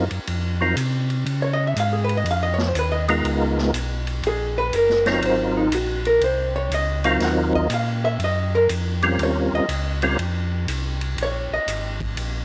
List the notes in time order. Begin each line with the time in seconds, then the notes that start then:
0.11 F#2, ride
0.27 F2, ride
0.61 F#3 C4 D#4 F4 A#4
0.76 C3, hi-hat pedal, ride
1.10 ride
1.26 C#3, ride
1.42 C#5
1.53 D#5
1.67 E5
1.76 G#2 F5, hi-hat pedal, ride
1.93 G#4
2.04 B4
2.09 ride
2.17 D#5
2.24 F2, ride
2.31 F5
2.43 D#5
2.54 C#5
2.58 snare
2.67 C5
2.74 D#2, hi-hat pedal, ride
2.79 B4
2.92 D#5
3.08 G#3 B3 D#4 F4 A#4, ride
3.24 C#2, ride
3.58 snare
3.73 B1, hi-hat pedal, ride
4.07 ride
4.23 A#1, ride
4.27 G#4
4.58 B4
4.73 F#1 A#4, hi-hat pedal, ride
4.90 snare
5.06 F#3 C4 D#4 F4 A#4 C#5, snare, ride
5.22 G#1 C5, ride
5.57 D#4
5.71 A#1 F#4, hi-hat pedal, ride
6.05 A#4, ride
6.21 C2 C5, ride
6.56 C#5
6.70 C#2, hi-hat pedal, ride
6.74 D#5
7.04 F#3 C4 D#4 F4 A#4 F5, ride
7.20 D#2, snare, ride
7.24 F#5
7.53 D#5, kick
7.70 A#2, hi-hat pedal, ride
7.74 F5
8.05 E5
8.19 F#2, ride
8.24 D#5
8.55 A#4
8.69 F2, hi-hat pedal, ride
9.02 G3 C4 C#4 F4 A#4, ride
9.19 D#2, ride
9.23 C#5
9.52 D#2 D#5
9.68 C#2, hi-hat pedal, ride
10.02 G3 C4 C#4 F4 A#4, ride
10.18 F2, ride
10.67 C2, hi-hat pedal, ride
11.01 ride
11.17 A#1, ride
11.23 C#5
11.51 A#1 D#5
11.66 G#1, hi-hat pedal, ride
12.00 kick, ride
12.16 A#1, ride